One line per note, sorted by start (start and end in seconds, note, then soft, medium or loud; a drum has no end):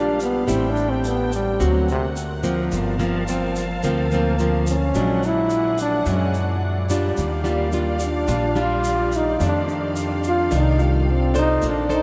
0.00 0.45 A#1 loud
0.00 0.46 A#2 soft
0.00 0.44 G3 medium
0.00 0.22 D4 medium
0.00 0.44 D4 medium
0.00 0.46 D4 medium
0.00 0.44 F4 medium
0.00 0.47 G4 medium
0.00 0.48 G4 soft
0.00 0.47 F5 medium
0.20 0.53 B3 medium
0.20 shaker medium
0.47 1.56 A1 medium
0.47 1.56 A2 medium
0.47 1.23 G3 medium
0.47 1.58 C4 medium
0.47 1.23 C4 medium
0.47 1.23 E4 medium
0.47 1.40 G4 soft
0.47 1.58 A4 medium
0.47 1.59 G5 medium
0.47 shaker medium
0.51 0.71 C4 medium
0.70 0.91 D4 medium
0.76 shaker soft
0.90 1.09 C4 medium
1.04 1.34 B3 medium
1.04 shaker medium
1.32 1.66 G3 medium
1.32 shaker medium
1.59 2.68 D2 medium
1.59 2.68 D3 medium
1.59 2.15 A#3 medium
1.59 4.90 C4 medium
1.59 2.15 C4 soft
1.59 2.15 F#4 medium
1.59 4.91 A#4 medium
1.59 2.70 F#5 medium
1.59 shaker medium
1.65 1.90 F#3 medium
1.88 2.07 C3 medium
1.88 shaker soft
2.16 shaker medium
2.43 2.95 F3 medium
2.43 2.95 A#3 medium
2.43 2.95 C4 medium
2.43 shaker medium
2.70 3.79 G1 medium
2.70 3.80 G2 medium
2.70 4.92 F5 medium
2.70 4.91 A5 medium
2.70 shaker medium
2.99 3.23 F3 medium
2.99 3.23 A#3 medium
2.99 3.23 C4 medium
2.99 shaker soft
3.28 3.64 F3 medium
3.28 3.64 A#3 medium
3.28 3.64 C4 medium
3.28 shaker medium
3.56 shaker medium
3.83 4.91 D2 medium
3.83 4.92 D3 medium
3.83 4.07 F3 medium
3.83 4.07 A#3 medium
3.83 4.07 C4 medium
3.83 4.75 A#4 soft
3.83 shaker medium
4.11 4.35 F3 medium
4.11 4.35 A#3 medium
4.11 4.36 C4 medium
4.11 shaker soft
4.15 4.65 A#3 medium
4.39 4.75 F3 medium
4.39 4.75 A#3 medium
4.39 4.75 C4 medium
4.39 shaker medium
4.67 5.27 C#4 medium
4.67 shaker medium
4.94 6.02 A#1 medium
4.94 6.03 A#2 medium
4.94 6.02 F#3 medium
4.94 6.02 G#3 medium
4.94 6.02 D4 medium
4.94 7.15 G#4 medium
4.94 11.58 D5 medium
4.94 7.15 F#5 medium
4.94 shaker medium
5.23 5.79 E4 loud
5.23 shaker soft
5.50 shaker medium
5.78 6.12 D4 medium
5.78 shaker medium
6.06 7.13 F#2 loud
6.06 7.14 A#2 soft
6.06 6.85 F#3 medium
6.06 6.85 G#3 soft
6.06 6.85 D4 medium
6.06 shaker medium
6.10 6.36 C#4 medium
6.34 shaker soft
6.89 7.41 G3 medium
6.89 7.41 D4 medium
6.89 7.41 F4 medium
6.89 shaker medium
7.17 8.25 D#2 medium
7.17 8.26 D#3 medium
7.17 11.59 G4 medium
7.17 9.38 F5 medium
7.17 shaker medium
7.44 7.68 G3 medium
7.44 7.68 D4 medium
7.44 7.68 F4 medium
7.44 shaker soft
7.49 7.99 A#3 medium
7.72 8.09 G3 medium
7.72 8.09 D4 medium
7.72 8.09 F4 medium
7.72 shaker medium
7.99 8.92 F4 medium
7.99 shaker medium
8.04 8.62 D4 medium
8.27 9.36 A#1 loud
8.27 9.37 A#2 medium
8.27 8.44 G3 soft
8.27 8.45 D4 medium
8.27 8.45 F4 medium
8.27 shaker medium
8.55 9.35 G3 medium
8.55 9.35 D4 medium
8.55 9.35 F4 medium
8.55 shaker soft
8.60 9.18 F4 loud
8.84 shaker medium
9.12 shaker medium
9.17 9.42 D#4 medium
9.39 10.48 F2 medium
9.39 10.47 F2 medium
9.39 10.14 D#3 medium
9.39 10.15 A3 medium
9.39 10.15 D4 medium
9.39 12.03 A4 medium
9.39 11.61 F5 medium
9.39 shaker medium
9.46 9.61 D4 medium
9.68 10.59 D4 medium
9.68 shaker soft
9.96 shaker medium
10.24 shaker medium
10.28 10.58 F4 medium
10.51 11.59 C2 medium
10.51 11.59 C3 medium
10.51 11.06 D#3 medium
10.51 11.07 A3 medium
10.51 11.06 D4 medium
10.51 shaker medium
10.57 10.85 D#4 medium
10.79 11.70 F4 medium
10.79 shaker soft
10.83 11.13 G3 medium
11.11 11.37 C4 medium
11.34 11.85 D4 medium
11.34 11.86 A4 medium
11.34 11.87 A4 soft
11.34 11.86 C5 medium
11.34 shaker medium
11.39 11.69 D#4 loud
11.62 12.03 A#1 medium
11.62 12.03 A#3 medium
11.62 12.03 C4 medium
11.62 12.03 D5 medium
11.62 shaker medium
11.68 11.93 D4 medium
11.89 12.03 D4 medium
11.89 12.03 A4 medium
11.89 12.03 C5 medium
11.89 shaker soft
11.94 12.03 D#4 medium